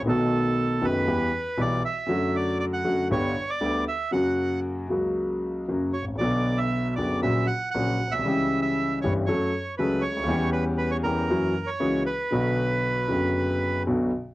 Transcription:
<<
  \new Staff \with { instrumentName = "Bandoneon" } { \time 4/4 \key b \minor \tempo 4 = 118 a'4. b'4. d''8 e''8~ | e''8 d''8 d''16 fis''8. cis''8. d''8. e''8 | fis''4 r2 r8 cis''8 | d''8. e''8. d''8 e''8 fis''8 fis''8. e''16~ |
e''8. e''8. cis''8 cis''4 b'8 cis''8~ | cis''8 b'8 b'16 cis''16 ais'4~ ais'16 cis''8. b'8~ | b'2. r4 | }
  \new Staff \with { instrumentName = "Grand piano" } { \clef bass \time 4/4 \key b \minor <b,, b, dis a b fis'>4. <fis,, fis, dis a b fis'>8 <e, e g b g'>8 r8 <b,, b, e g b g'>8 r8 | <fis, d fis a fis'>4. <fis, d fis a fis'>8 <g,, g, d g b g'>8 r8 <d, d g b g'>8 r8 | <fis, cis fis ais fis'>4. <cis, cis fis ais fis'>4. <fis, cis fis ais fis'>8 r32 gis,,32 a,,32 ais,,32 | <b,, b, d fis b fis'>4. <fis,, fis, d fis b fis'>8 <ais,, ais, cis fis ais fis'>8 r8 <ais,, ais, cis fis ais fis'>8 r32 ais,,32 b,,32 c,32 |
<cis, cis e g cis' g'>4. <g,, g, e g cis' g'>8 <fis, fis a cis' a'>8 r8 <cis, cis fis a cis' a'>8 r32 cis,32 d,32 dis,32 | <e, e g cis' g'>4. <e, e g cis' g'>8 <fis, e fis ais cis' fis'>8 r8 <cis, cis e ais cis' fis'>8 r8 | <b,, b, d fis b fis'>4. <fis,, fis, d fis b fis'>4. <b,, b, d fis b fis'>8 r8 | }
>>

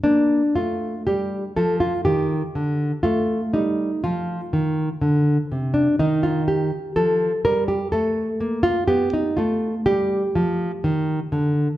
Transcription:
\new Staff \with { instrumentName = "Nylon-string guitar" } { \time 3/4 \key bes \major \tempo 4 = 61 << { d'8 f'8 g'8 a'16 f'16 g'4 | f'8 ees'8 f'4.~ f'16 d'16 | ees'16 f'16 g'8 a'8 bes'16 g'16 a'8. f'16 | g'16 ees'16 f'8 g'2 | } \\ { bes8 a8 g8 f8 ees8 d8 | a8 g8 f8 ees8 d8 c8 | ees4 f8 g8 a8 bes8 | b8 a8 g8 f8 ees8 d8 | } >> }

